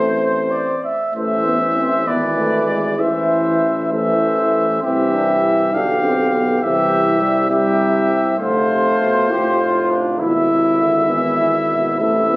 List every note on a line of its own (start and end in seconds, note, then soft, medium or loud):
0.00 0.83 A1 medium
0.00 0.83 A3 medium
0.00 0.80 C4 medium
0.00 0.14 C5 medium
0.00 0.83 C5 medium
0.19 0.53 C5 medium
0.51 0.83 D5 medium
0.84 1.14 E5 medium
1.14 2.02 A1 soft
1.14 2.03 E3 soft
1.14 1.43 A3 medium
1.14 2.09 C5 soft
1.14 2.09 E5 soft
1.45 1.59 B3 medium
1.77 1.90 C4 medium
2.06 3.00 G#1 soft
2.06 2.96 E3 soft
2.06 2.20 B3 medium
2.06 2.82 B4 soft
2.06 3.01 D5 soft
2.37 2.66 A3 medium
2.67 2.97 G#3 medium
2.97 4.82 A1 soft
2.97 3.60 E3 medium
2.97 3.91 E3 soft
2.97 3.91 C5 soft
2.97 3.92 E5 soft
3.61 3.94 E3 medium
3.93 4.81 E3 soft
3.93 4.82 A3 medium
3.93 4.81 C5 soft
3.93 4.81 E5 soft
4.82 5.74 C2 soft
4.82 5.74 E3 soft
4.82 5.12 C4 medium
4.82 5.71 G4 soft
4.82 5.75 E5 soft
5.13 5.26 D4 medium
5.43 5.74 E4 medium
5.73 6.62 B1 soft
5.73 6.62 D3 medium
5.73 6.05 D4 medium
5.73 6.61 G4 soft
5.73 6.62 F5 soft
6.04 6.35 C4 medium
6.33 6.62 B3 medium
6.62 8.35 C2 medium
6.62 7.49 C3 medium
6.62 7.20 E3 medium
6.62 7.49 G4 medium
6.62 7.49 E5 soft
7.21 7.50 G3 medium
7.50 8.37 C3 medium
7.50 8.10 G3 medium
7.50 8.37 G4 medium
7.50 8.37 E5 medium
8.38 9.14 F1 medium
8.38 8.70 D3 medium
8.38 9.32 A3 medium
8.38 9.33 F4 medium
8.38 10.03 C5 medium
8.69 8.99 C3 medium
9.00 9.32 B2 medium
9.30 10.22 F1 soft
9.30 10.22 A2 medium
9.30 10.20 F4 medium
9.30 9.61 G4 medium
9.61 9.92 F4 medium
9.91 10.21 D4 medium
10.19 11.98 G#1 medium
10.19 10.51 B2 medium
10.19 10.91 E4 medium
10.19 11.11 E4 medium
10.19 11.96 E5 soft
10.50 10.81 C3 medium
10.79 11.10 D3 medium
11.08 11.38 E3 medium
11.08 11.39 B3 medium
11.08 11.97 E4 soft
11.38 11.52 E3 soft
11.69 12.00 B2 soft
11.99 12.36 A1 medium
11.99 12.36 C3 soft
11.99 12.28 A3 medium
11.99 12.36 E4 medium
11.99 12.36 E5 soft
12.30 12.36 B3 medium